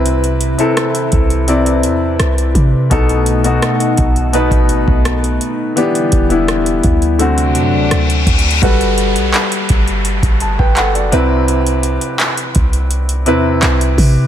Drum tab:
HH |x--x--x--x--x--x--x--x--x--x--x-----x--x--x-----|x--x--x--x--x--x--x--x--x--x--x-----x--x--x-----|x--x--x--x--x--x--x--x--x--x--x-----x--x--x-x-x-|x--x--x--x--x--x--x--x--x--x--x-----x--x--x-----|
CP |------------------------------------------------|------------------------------------------------|------------------------------------------------|------------x-----------------------x-----------|
SD |------------r-----------------------r-----------|------------r-----------------------r-----------|------------r-----------------------r-----------|------------------------------------------------|
BD |------------------o-----------------------o-----|o-----------------o--------o-----o--------------|------o-----------o-----------------------o-----|o-----------------o--------o-----o--------------|

HH |x--x--x--x--x--x--x--x--x--x--x-----x--x--o-----|
CP |------------x-----------------------x-----------|
SD |------------------------------------------------|
BD |------------------o-----------------------o-----|